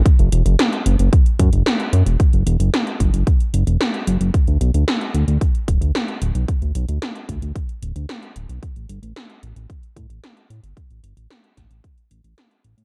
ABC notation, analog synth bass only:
X:1
M:4/4
L:1/16
Q:1/4=112
K:Bm
V:1 name="Analog synth bass" clef=bass
z F,,, E,,, F,,, z2 F,,, F,,, z2 F,, F,,, z2 F,, E,,, | z F,,, E,,, F,,, z2 F,,, F,,, z2 F,,, E,,, z2 F,,, F,,, | z D,, B,,, D,, z2 D,, D,, z2 D,,, D,, z2 D,,, B,,, | z D,, B,,, D,, z2 D,, D,, z2 D,,, D,, z2 D,,, B,,, |
z A,,, G,,, A,,, z2 A,,, A,,, z2 A,, A,,, z2 A,, G,,, | z A,,, G,,, A,,, z2 A,,, A,,, z2 A,,, A,,, z2 A,,, A,, |]